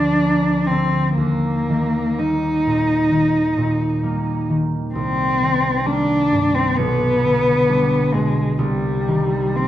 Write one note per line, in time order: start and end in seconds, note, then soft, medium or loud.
0.00 1.21 D2 soft
0.00 1.21 F3 soft
0.00 0.20 A#3 soft
0.00 0.68 D4 medium
0.21 2.18 A#3 soft
0.67 1.22 D3 soft
0.67 1.15 C4 medium
1.16 4.99 D#2 soft
1.16 2.20 A#3 medium
1.69 3.10 D#3 soft
2.18 4.02 G3 soft
2.18 4.02 A#3 soft
2.18 4.49 D#4 medium
2.66 3.56 A#2 soft
3.11 4.48 D#3 soft
3.57 4.99 A#2 soft
4.03 5.85 G3 soft
4.03 5.85 A#3 soft
4.50 5.00 D#3 soft
4.95 6.81 C2 soft
4.95 5.87 C4 medium
5.42 6.81 D#3 soft
5.85 7.68 G3 soft
5.85 6.81 A#3 soft
5.85 6.56 D4 medium
6.32 6.81 G2 soft
6.55 6.78 C4 medium
6.77 8.62 B1 soft
6.77 8.15 B3 medium
7.23 8.62 D3 soft
7.69 9.56 G3 soft
7.69 8.63 D4 soft
8.14 8.63 B2 soft
8.14 8.60 G#3 medium
8.58 9.68 C2 soft
8.58 9.57 G3 medium
9.08 9.68 D#3 soft
9.56 9.68 G3 soft
9.56 9.68 C4 medium
9.56 9.68 C4 soft